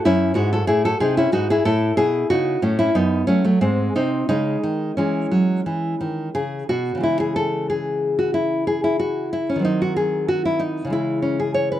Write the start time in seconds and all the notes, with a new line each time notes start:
0.05 F#2 C#4 E4
0.35 G#2 D#4 F#4
0.53 F#4 A4
0.67 A2 E4 G#4
0.85 F#4 A4
1.00 C3 D#4 G#4
1.17 C#4 E4
1.32 G#2 D#4 F#4
1.50 E4 G#4
1.65 A2 E4 A4
1.97 B2 E4 G#4
2.30 C#3 D#4 F#4
2.62 A2 A3 C#4
2.79 C#4 E4
2.95 F#2 B3 D#4
3.27 F#3 A3 C#4
3.44 F#3 A3
3.61 G#2 G#3 C4
3.95 C3 C4 D#4
4.29 C#3 G#3 D#4
4.63 D#3
4.97 E3 G#3 C#4
5.31 F#3
5.66 E3
6.01 D#3
6.35 C#3 G#4
6.69 B2 F#4
6.95 C#3 E3
7.01 G#3 E4
7.20 G#4
7.36 A4
7.70 G#4
8.19 F#4
8.34 E4
8.67 G#4
8.84 E4
9.00 F#4
9.33 E4
9.49 C#4
9.56 D#3 F#3
9.62 C4 D#4
9.82 F#4
9.96 G#4
10.28 F#4
10.45 E4
10.59 D#4
10.85 C#3 E3
10.90 G#3 E4
11.22 C#4
11.40 G#4
11.54 C#5
11.72 B4